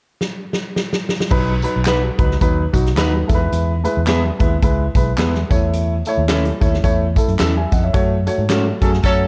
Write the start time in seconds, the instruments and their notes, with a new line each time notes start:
0.21 snare
0.53 snare
0.76 snare
0.93 snare
1.09 snare
1.20 snare
1.30 fingered electric bass B1, grand piano F#3 D#4 B4, kick, crash, tambourine
1.62 grand piano F#3 D#4 B4, closed hi-hat, tambourine
1.76 fingered electric bass B1
1.85 grand piano F#3 D#4 B4, clean electric guitar D#4 F#4 B4, snare, clap, closed hi-hat, tambourine
2.18 fingered electric bass C#2, grand piano F#3 D#4 B4, kick, closed hi-hat, tambourine
2.31 snare
2.41 fingered electric bass D#2, grand piano F#3 D#4 B4, kick, closed hi-hat, tambourine
2.73 fingered electric bass B1, grand piano F#3 D#4 F#4, kick, closed hi-hat, tambourine
2.86 snare, closed hi-hat
2.95 fingered electric bass D#2, grand piano F#3 D#4 B4, clean electric guitar D#4 F#4 B4, snare, clap, closed hi-hat, tambourine
3.27 fingered electric bass E2, grand piano G#3 E4 A4, kick, closed hi-hat, tambourine
3.34 grand piano B4
3.52 fingered electric bass E2, closed hi-hat, tambourine
3.84 grand piano G#3 E4 B4, closed hi-hat, tambourine
3.97 fingered electric bass E2
4.07 grand piano G#3 E4 B4, clean electric guitar B3 E4 G#4, snare, clap, closed hi-hat, tambourine
4.39 fingered electric bass D#2, grand piano G#3 E4 B4, kick, closed hi-hat, tambourine
4.63 fingered electric bass C#2, grand piano G#3 E4 B4, kick, closed hi-hat, tambourine
4.95 fingered electric bass B1, grand piano G#3 E4 B4, kick, closed hi-hat, tambourine
5.18 fingered electric bass E2, grand piano G#3 E4 B4, clean electric guitar B3 E4 G#4, snare, clap, closed hi-hat, tambourine
5.35 snare
5.50 fingered electric bass E2, grand piano A3 E4 C#5, kick, closed hi-hat, tambourine
5.73 closed hi-hat
6.05 grand piano A3 E4 C#5, closed hi-hat, tambourine
6.17 fingered electric bass D#2
6.28 grand piano A3 E4 C#5, clean electric guitar C#4 E4 A4, snare, clap, closed hi-hat, tambourine
6.45 closed hi-hat
6.60 fingered electric bass D#2, grand piano A3 E4 C#5, kick, closed hi-hat, tambourine
6.74 snare
6.83 fingered electric bass E2, grand piano A3 E4 C#5, kick, closed hi-hat, tambourine
7.16 grand piano A3 E4 A4, kick, closed hi-hat, tambourine
7.28 fingered electric bass F#2, closed hi-hat
7.39 fingered electric bass E2, clean electric guitar C#4 E4 A4, snare, clap, closed hi-hat, tambourine
7.57 grand piano E5 G#5
7.72 fingered electric bass F2, grand piano D#5 F#5, kick, closed hi-hat, tambourine
7.84 grand piano C#5 E5
7.93 fingered electric bass F#2, grand piano A3 F#4 C#5, kick, closed hi-hat, tambourine
8.26 grand piano A3 F#4 C#5, closed hi-hat, tambourine
8.38 fingered electric bass G#2
8.49 grand piano A3 F#4 C#5, clean electric guitar C#4 F#4 A4, snare, clap, closed hi-hat, tambourine
8.81 fingered electric bass F#2, horn section F#3 C#4 A4, grand piano A3 F#4 G#4, kick, closed hi-hat, tambourine
8.93 snare
9.03 fingered electric bass F#2, horn section F#3 C#4 A4, grand piano A3 F#4 C#5, kick, closed hi-hat, tambourine